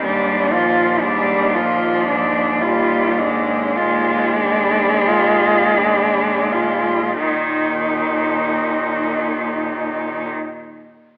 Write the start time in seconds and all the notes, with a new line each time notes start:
0.04 D#2 G#2 G3 D4
0.52 A#2 F3 F4
1.02 G#2 G3 D4
1.54 A#2 F3 F4
2.06 G#2 D4
2.61 A#2 G3 F4
3.17 G#2 G#3 D4
3.76 A#2 F4
4.39 G#2 D4
5.05 A#2 F4
5.76 G#2 D4
6.51 A#2 F4
7.25 D#2 A#2 D#3 D#4